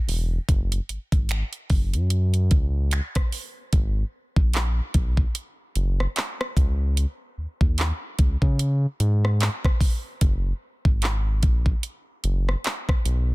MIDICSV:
0, 0, Header, 1, 3, 480
1, 0, Start_track
1, 0, Tempo, 810811
1, 287, Time_signature, 4, 2, 24, 8
1, 7902, End_track
2, 0, Start_track
2, 0, Title_t, "Analog synth bass"
2, 0, Program_c, 0, 38
2, 46, Note_on_c, 0, 28, 97
2, 231, Note_off_c, 0, 28, 0
2, 288, Note_on_c, 0, 30, 115
2, 472, Note_off_c, 0, 30, 0
2, 527, Note_on_c, 0, 32, 51
2, 582, Note_off_c, 0, 32, 0
2, 664, Note_on_c, 0, 32, 86
2, 849, Note_off_c, 0, 32, 0
2, 1007, Note_on_c, 0, 30, 98
2, 1147, Note_on_c, 0, 42, 99
2, 1156, Note_off_c, 0, 30, 0
2, 1488, Note_on_c, 0, 37, 87
2, 1497, Note_off_c, 0, 42, 0
2, 1779, Note_off_c, 0, 37, 0
2, 2207, Note_on_c, 0, 32, 110
2, 2391, Note_off_c, 0, 32, 0
2, 2583, Note_on_c, 0, 34, 85
2, 2846, Note_off_c, 0, 34, 0
2, 2927, Note_on_c, 0, 35, 95
2, 3111, Note_off_c, 0, 35, 0
2, 3408, Note_on_c, 0, 30, 93
2, 3592, Note_off_c, 0, 30, 0
2, 3887, Note_on_c, 0, 37, 99
2, 4178, Note_off_c, 0, 37, 0
2, 4366, Note_on_c, 0, 39, 50
2, 4422, Note_off_c, 0, 39, 0
2, 4504, Note_on_c, 0, 39, 86
2, 4689, Note_off_c, 0, 39, 0
2, 4848, Note_on_c, 0, 37, 86
2, 4954, Note_off_c, 0, 37, 0
2, 4984, Note_on_c, 0, 49, 96
2, 5247, Note_off_c, 0, 49, 0
2, 5327, Note_on_c, 0, 44, 89
2, 5618, Note_off_c, 0, 44, 0
2, 6047, Note_on_c, 0, 30, 119
2, 6231, Note_off_c, 0, 30, 0
2, 6423, Note_on_c, 0, 32, 86
2, 6767, Note_on_c, 0, 34, 93
2, 6776, Note_off_c, 0, 32, 0
2, 6951, Note_off_c, 0, 34, 0
2, 7247, Note_on_c, 0, 30, 85
2, 7431, Note_off_c, 0, 30, 0
2, 7726, Note_on_c, 0, 35, 93
2, 7902, Note_off_c, 0, 35, 0
2, 7902, End_track
3, 0, Start_track
3, 0, Title_t, "Drums"
3, 51, Note_on_c, 9, 46, 79
3, 110, Note_off_c, 9, 46, 0
3, 287, Note_on_c, 9, 36, 102
3, 288, Note_on_c, 9, 42, 78
3, 347, Note_off_c, 9, 36, 0
3, 347, Note_off_c, 9, 42, 0
3, 426, Note_on_c, 9, 42, 71
3, 485, Note_off_c, 9, 42, 0
3, 529, Note_on_c, 9, 42, 55
3, 588, Note_off_c, 9, 42, 0
3, 664, Note_on_c, 9, 36, 101
3, 665, Note_on_c, 9, 42, 55
3, 723, Note_off_c, 9, 36, 0
3, 724, Note_off_c, 9, 42, 0
3, 764, Note_on_c, 9, 42, 66
3, 775, Note_on_c, 9, 26, 112
3, 823, Note_off_c, 9, 42, 0
3, 834, Note_off_c, 9, 26, 0
3, 904, Note_on_c, 9, 42, 50
3, 963, Note_off_c, 9, 42, 0
3, 1004, Note_on_c, 9, 46, 51
3, 1007, Note_on_c, 9, 36, 92
3, 1063, Note_off_c, 9, 46, 0
3, 1066, Note_off_c, 9, 36, 0
3, 1146, Note_on_c, 9, 42, 48
3, 1205, Note_off_c, 9, 42, 0
3, 1245, Note_on_c, 9, 42, 81
3, 1304, Note_off_c, 9, 42, 0
3, 1383, Note_on_c, 9, 42, 49
3, 1442, Note_off_c, 9, 42, 0
3, 1485, Note_on_c, 9, 42, 61
3, 1488, Note_on_c, 9, 36, 97
3, 1544, Note_off_c, 9, 42, 0
3, 1547, Note_off_c, 9, 36, 0
3, 1725, Note_on_c, 9, 42, 65
3, 1733, Note_on_c, 9, 26, 105
3, 1784, Note_off_c, 9, 42, 0
3, 1792, Note_off_c, 9, 26, 0
3, 1867, Note_on_c, 9, 42, 54
3, 1869, Note_on_c, 9, 36, 95
3, 1872, Note_on_c, 9, 37, 101
3, 1926, Note_off_c, 9, 42, 0
3, 1928, Note_off_c, 9, 36, 0
3, 1932, Note_off_c, 9, 37, 0
3, 1968, Note_on_c, 9, 46, 78
3, 2027, Note_off_c, 9, 46, 0
3, 2206, Note_on_c, 9, 42, 77
3, 2207, Note_on_c, 9, 36, 107
3, 2265, Note_off_c, 9, 42, 0
3, 2266, Note_off_c, 9, 36, 0
3, 2584, Note_on_c, 9, 36, 102
3, 2643, Note_off_c, 9, 36, 0
3, 2685, Note_on_c, 9, 42, 69
3, 2696, Note_on_c, 9, 39, 116
3, 2744, Note_off_c, 9, 42, 0
3, 2755, Note_off_c, 9, 39, 0
3, 2926, Note_on_c, 9, 42, 71
3, 2927, Note_on_c, 9, 36, 95
3, 2985, Note_off_c, 9, 42, 0
3, 2987, Note_off_c, 9, 36, 0
3, 3063, Note_on_c, 9, 36, 89
3, 3122, Note_off_c, 9, 36, 0
3, 3167, Note_on_c, 9, 42, 84
3, 3226, Note_off_c, 9, 42, 0
3, 3407, Note_on_c, 9, 42, 58
3, 3466, Note_off_c, 9, 42, 0
3, 3553, Note_on_c, 9, 37, 65
3, 3612, Note_off_c, 9, 37, 0
3, 3647, Note_on_c, 9, 42, 68
3, 3654, Note_on_c, 9, 39, 104
3, 3706, Note_off_c, 9, 42, 0
3, 3714, Note_off_c, 9, 39, 0
3, 3793, Note_on_c, 9, 37, 106
3, 3852, Note_off_c, 9, 37, 0
3, 3887, Note_on_c, 9, 36, 110
3, 3890, Note_on_c, 9, 42, 72
3, 3946, Note_off_c, 9, 36, 0
3, 3950, Note_off_c, 9, 42, 0
3, 4127, Note_on_c, 9, 42, 79
3, 4187, Note_off_c, 9, 42, 0
3, 4504, Note_on_c, 9, 36, 96
3, 4564, Note_off_c, 9, 36, 0
3, 4605, Note_on_c, 9, 42, 74
3, 4616, Note_on_c, 9, 39, 111
3, 4664, Note_off_c, 9, 42, 0
3, 4675, Note_off_c, 9, 39, 0
3, 4846, Note_on_c, 9, 42, 74
3, 4848, Note_on_c, 9, 36, 86
3, 4905, Note_off_c, 9, 42, 0
3, 4907, Note_off_c, 9, 36, 0
3, 4984, Note_on_c, 9, 36, 85
3, 5043, Note_off_c, 9, 36, 0
3, 5087, Note_on_c, 9, 42, 82
3, 5147, Note_off_c, 9, 42, 0
3, 5328, Note_on_c, 9, 42, 60
3, 5388, Note_off_c, 9, 42, 0
3, 5474, Note_on_c, 9, 37, 67
3, 5533, Note_off_c, 9, 37, 0
3, 5568, Note_on_c, 9, 42, 66
3, 5576, Note_on_c, 9, 39, 104
3, 5627, Note_off_c, 9, 42, 0
3, 5635, Note_off_c, 9, 39, 0
3, 5710, Note_on_c, 9, 36, 98
3, 5715, Note_on_c, 9, 37, 105
3, 5769, Note_off_c, 9, 36, 0
3, 5774, Note_off_c, 9, 37, 0
3, 5805, Note_on_c, 9, 36, 106
3, 5809, Note_on_c, 9, 46, 83
3, 5864, Note_off_c, 9, 36, 0
3, 5868, Note_off_c, 9, 46, 0
3, 6045, Note_on_c, 9, 42, 81
3, 6047, Note_on_c, 9, 36, 106
3, 6105, Note_off_c, 9, 42, 0
3, 6106, Note_off_c, 9, 36, 0
3, 6424, Note_on_c, 9, 36, 100
3, 6483, Note_off_c, 9, 36, 0
3, 6523, Note_on_c, 9, 42, 71
3, 6534, Note_on_c, 9, 39, 114
3, 6582, Note_off_c, 9, 42, 0
3, 6593, Note_off_c, 9, 39, 0
3, 6764, Note_on_c, 9, 42, 71
3, 6766, Note_on_c, 9, 36, 92
3, 6824, Note_off_c, 9, 42, 0
3, 6826, Note_off_c, 9, 36, 0
3, 6902, Note_on_c, 9, 36, 84
3, 6961, Note_off_c, 9, 36, 0
3, 7004, Note_on_c, 9, 42, 81
3, 7064, Note_off_c, 9, 42, 0
3, 7245, Note_on_c, 9, 42, 59
3, 7304, Note_off_c, 9, 42, 0
3, 7392, Note_on_c, 9, 37, 64
3, 7451, Note_off_c, 9, 37, 0
3, 7485, Note_on_c, 9, 42, 68
3, 7493, Note_on_c, 9, 39, 106
3, 7544, Note_off_c, 9, 42, 0
3, 7552, Note_off_c, 9, 39, 0
3, 7629, Note_on_c, 9, 36, 96
3, 7632, Note_on_c, 9, 37, 110
3, 7688, Note_off_c, 9, 36, 0
3, 7691, Note_off_c, 9, 37, 0
3, 7729, Note_on_c, 9, 42, 73
3, 7788, Note_off_c, 9, 42, 0
3, 7902, End_track
0, 0, End_of_file